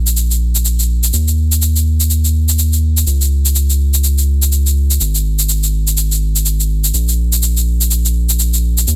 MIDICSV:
0, 0, Header, 1, 3, 480
1, 0, Start_track
1, 0, Tempo, 483871
1, 1122, Time_signature, 4, 2, 24, 8
1, 8885, End_track
2, 0, Start_track
2, 0, Title_t, "Analog synth bass"
2, 0, Program_c, 0, 38
2, 0, Note_on_c, 0, 34, 82
2, 1102, Note_off_c, 0, 34, 0
2, 1121, Note_on_c, 0, 39, 82
2, 3022, Note_off_c, 0, 39, 0
2, 3041, Note_on_c, 0, 37, 81
2, 4942, Note_off_c, 0, 37, 0
2, 4961, Note_on_c, 0, 32, 81
2, 6862, Note_off_c, 0, 32, 0
2, 6881, Note_on_c, 0, 34, 81
2, 8782, Note_off_c, 0, 34, 0
2, 8801, Note_on_c, 0, 39, 81
2, 8885, Note_off_c, 0, 39, 0
2, 8885, End_track
3, 0, Start_track
3, 0, Title_t, "Drums"
3, 69, Note_on_c, 9, 69, 56
3, 166, Note_off_c, 9, 69, 0
3, 166, Note_on_c, 9, 69, 47
3, 265, Note_off_c, 9, 69, 0
3, 309, Note_on_c, 9, 69, 29
3, 408, Note_off_c, 9, 69, 0
3, 549, Note_on_c, 9, 69, 58
3, 646, Note_off_c, 9, 69, 0
3, 646, Note_on_c, 9, 69, 45
3, 745, Note_off_c, 9, 69, 0
3, 789, Note_on_c, 9, 69, 28
3, 888, Note_off_c, 9, 69, 0
3, 1029, Note_on_c, 9, 69, 55
3, 1126, Note_off_c, 9, 69, 0
3, 1126, Note_on_c, 9, 69, 46
3, 1225, Note_off_c, 9, 69, 0
3, 1269, Note_on_c, 9, 69, 28
3, 1368, Note_off_c, 9, 69, 0
3, 1509, Note_on_c, 9, 69, 54
3, 1606, Note_off_c, 9, 69, 0
3, 1606, Note_on_c, 9, 69, 46
3, 1705, Note_off_c, 9, 69, 0
3, 1749, Note_on_c, 9, 69, 29
3, 1848, Note_off_c, 9, 69, 0
3, 1989, Note_on_c, 9, 69, 58
3, 2086, Note_off_c, 9, 69, 0
3, 2086, Note_on_c, 9, 69, 45
3, 2185, Note_off_c, 9, 69, 0
3, 2229, Note_on_c, 9, 69, 29
3, 2329, Note_off_c, 9, 69, 0
3, 2469, Note_on_c, 9, 69, 58
3, 2566, Note_off_c, 9, 69, 0
3, 2566, Note_on_c, 9, 69, 47
3, 2665, Note_off_c, 9, 69, 0
3, 2709, Note_on_c, 9, 69, 29
3, 2808, Note_off_c, 9, 69, 0
3, 2950, Note_on_c, 9, 69, 55
3, 3046, Note_off_c, 9, 69, 0
3, 3046, Note_on_c, 9, 69, 47
3, 3145, Note_off_c, 9, 69, 0
3, 3189, Note_on_c, 9, 69, 29
3, 3288, Note_off_c, 9, 69, 0
3, 3430, Note_on_c, 9, 69, 55
3, 3526, Note_off_c, 9, 69, 0
3, 3526, Note_on_c, 9, 69, 47
3, 3625, Note_off_c, 9, 69, 0
3, 3669, Note_on_c, 9, 69, 28
3, 3769, Note_off_c, 9, 69, 0
3, 3909, Note_on_c, 9, 69, 56
3, 4006, Note_off_c, 9, 69, 0
3, 4006, Note_on_c, 9, 69, 47
3, 4105, Note_off_c, 9, 69, 0
3, 4149, Note_on_c, 9, 69, 29
3, 4248, Note_off_c, 9, 69, 0
3, 4389, Note_on_c, 9, 69, 59
3, 4486, Note_off_c, 9, 69, 0
3, 4486, Note_on_c, 9, 69, 47
3, 4585, Note_off_c, 9, 69, 0
3, 4629, Note_on_c, 9, 69, 30
3, 4728, Note_off_c, 9, 69, 0
3, 4869, Note_on_c, 9, 69, 56
3, 4966, Note_off_c, 9, 69, 0
3, 4966, Note_on_c, 9, 69, 49
3, 5065, Note_off_c, 9, 69, 0
3, 5109, Note_on_c, 9, 69, 30
3, 5208, Note_off_c, 9, 69, 0
3, 5349, Note_on_c, 9, 69, 59
3, 5446, Note_off_c, 9, 69, 0
3, 5446, Note_on_c, 9, 69, 50
3, 5545, Note_off_c, 9, 69, 0
3, 5589, Note_on_c, 9, 69, 30
3, 5689, Note_off_c, 9, 69, 0
3, 5829, Note_on_c, 9, 69, 61
3, 5926, Note_off_c, 9, 69, 0
3, 5926, Note_on_c, 9, 69, 50
3, 6025, Note_off_c, 9, 69, 0
3, 6069, Note_on_c, 9, 69, 29
3, 6169, Note_off_c, 9, 69, 0
3, 6310, Note_on_c, 9, 69, 61
3, 6406, Note_off_c, 9, 69, 0
3, 6406, Note_on_c, 9, 69, 50
3, 6506, Note_off_c, 9, 69, 0
3, 6549, Note_on_c, 9, 69, 30
3, 6649, Note_off_c, 9, 69, 0
3, 6789, Note_on_c, 9, 69, 59
3, 6886, Note_off_c, 9, 69, 0
3, 6886, Note_on_c, 9, 69, 52
3, 6986, Note_off_c, 9, 69, 0
3, 7030, Note_on_c, 9, 69, 31
3, 7129, Note_off_c, 9, 69, 0
3, 7269, Note_on_c, 9, 69, 61
3, 7366, Note_off_c, 9, 69, 0
3, 7366, Note_on_c, 9, 69, 51
3, 7465, Note_off_c, 9, 69, 0
3, 7509, Note_on_c, 9, 69, 31
3, 7608, Note_off_c, 9, 69, 0
3, 7750, Note_on_c, 9, 69, 62
3, 7846, Note_off_c, 9, 69, 0
3, 7846, Note_on_c, 9, 69, 52
3, 7945, Note_off_c, 9, 69, 0
3, 7990, Note_on_c, 9, 69, 31
3, 8089, Note_off_c, 9, 69, 0
3, 8229, Note_on_c, 9, 69, 65
3, 8326, Note_off_c, 9, 69, 0
3, 8326, Note_on_c, 9, 69, 50
3, 8425, Note_off_c, 9, 69, 0
3, 8469, Note_on_c, 9, 69, 32
3, 8568, Note_off_c, 9, 69, 0
3, 8709, Note_on_c, 9, 69, 62
3, 8806, Note_off_c, 9, 69, 0
3, 8806, Note_on_c, 9, 69, 53
3, 8885, Note_off_c, 9, 69, 0
3, 8885, End_track
0, 0, End_of_file